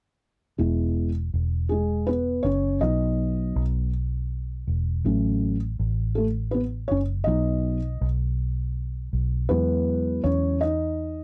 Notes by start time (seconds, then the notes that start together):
0.58 E1 G#3 B3 E4
1.34 E1
1.69 G#3 G#4
2.07 B3 B4
2.43 F#1 C#4 C#5
2.81 B1 F#3 B3 D#4 D#5
3.56 B1
4.67 E1
5.05 A1 F#3 A3 C#4
5.79 A1
6.15 A3 A4
6.51 B3 B4
6.88 F#1 C#4 C#5
7.24 B1 F#3 B3 D#4 D#5
8.01 B1
9.13 B1
9.49 E2 F#3 G#3 B3 E4 B4
10.24 E2 C#4 C#5
10.61 D#4 D#5